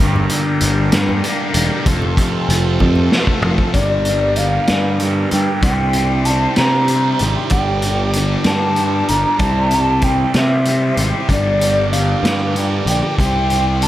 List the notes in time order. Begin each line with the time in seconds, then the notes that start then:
0.00 G1 G2 A#3 D4 G4 A#4, high conga
0.16 low conga
0.29 D3, closed hi-hat
0.61 G1 G3, closed hi-hat
0.92 G2 D3, snare, closed hi-hat, high conga, low conga
1.09 low conga
1.24 A#3, closed hi-hat
1.54 E1 G3, closed hi-hat
1.86 F1 F2 A3 C4 F4 A4, kick, closed hi-hat, high conga
2.02 low conga
2.17 C3, kick, closed hi-hat
2.49 F1 F3, closed hi-hat
2.65 low conga
2.80 F2 C3, kick, high conga
2.96 low conga
3.12 A3, snare
3.27 kick
3.42 F1 F3, floor tom
3.58 kick
3.73 G1 G2 D3 A#3 D4 G4 A#4 D5, kick, closed hi-hat
3.77 G3
4.05 G3, closed hi-hat
4.10 D3
4.36 G2 D3 G3 F5, closed hi-hat
4.67 G2 G3, snare, closed hi-hat
4.72 D3
4.99 G2 D3 G3, closed hi-hat
5.31 G2 D3 G3 G5, closed hi-hat
5.62 C2 C3 G3 C4 E4 C5 G5, kick, closed hi-hat
5.93 C4, closed hi-hat
5.98 G3
6.25 C3 G3 A5, closed hi-hat
6.30 C4
6.56 C3 C4 A#5, snare, closed hi-hat
6.63 G3
6.88 C3 G3, closed hi-hat
6.93 C4
7.19 G#1 C4, closed hi-hat
7.25 G3
7.50 G1 G2 G5, kick, closed hi-hat
7.54 D3 G3 A#4 D5
7.82 G3, closed hi-hat
7.87 D3
8.13 G2 D3, closed hi-hat
8.19 G3
8.44 G2 G3 A5, snare, closed hi-hat
8.50 D3
8.76 G2 D3, closed hi-hat
8.81 G3
9.08 G1 D3 G3 A#5, closed hi-hat
9.38 C2 C3 G3 E4 G4 C5 A5, kick, closed hi-hat
9.43 C4
9.71 G3 C4, closed hi-hat
10.02 C3 G3 G5, kick, closed hi-hat
10.07 C4
10.34 C3 C4 E5, snare, closed hi-hat
10.39 G3
10.65 C3 G3, closed hi-hat
10.70 C4
10.97 G#1 G3 C4, closed hi-hat
11.29 G1 G2 D3 G3 D4 A#4 D5, kick, closed hi-hat
11.61 D3 G3, closed hi-hat
11.92 G2 D3 G3 F5, closed hi-hat
12.23 G2 G3, snare, closed hi-hat
12.27 D3
12.55 G2 D3 G3, closed hi-hat
12.86 A#1 G3 G5, closed hi-hat
12.92 D3
13.18 C2 C3 G3 C4 E4 C5 G5, kick, closed hi-hat
13.50 G3 C4, closed hi-hat
13.82 C3 G3 A5, closed hi-hat